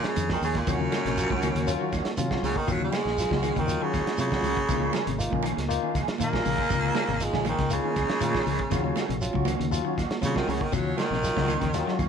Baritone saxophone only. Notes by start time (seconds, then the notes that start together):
0.08 C#3
0.33 D#3
0.44 C#3
0.58 A#2
0.71 F#2
2.44 C#3
2.57 D#3
2.71 F#3
2.84 G#3
3.59 D#3
3.83 C#3
4.20 C#3
6.24 A#3
7.23 G#3
7.48 D#3
7.72 C#3
10.25 C#3
10.37 D#3
10.50 C#3
10.62 D#3
10.73 F#3
10.97 D#3